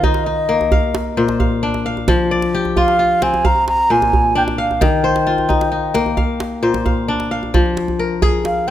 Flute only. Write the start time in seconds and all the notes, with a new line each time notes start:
0.04 D#5
2.77 F5
3.23 G#5
3.46 A#5
3.68 A#5
3.92 G#5
4.37 G5
4.60 F5
4.83 G5
8.45 F5